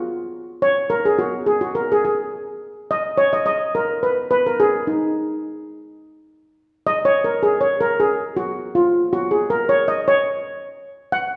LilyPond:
\new Staff \with { instrumentName = "Steel pan" } { \time 4/4 \key fis \major \tempo 4 = 106 r4 cis''8 ais'16 gis'16 fis'8 gis'16 fis'16 ais'16 gis'16 gis'8 | r4 dis''8 cis''16 dis''16 dis''8 ais'8 b'8 b'16 ais'16 | gis'8 dis'4 r2 r8 | \tuplet 3/2 { dis''8 cis''8 ais'8 gis'8 cis''8 ais'8 gis'4 fis'8~ fis'8 eis'4 } |
\tuplet 3/2 { fis'8 gis'8 ais'8 cis''8 dis''8 cis''8~ } cis''8. r8. fis''8 | }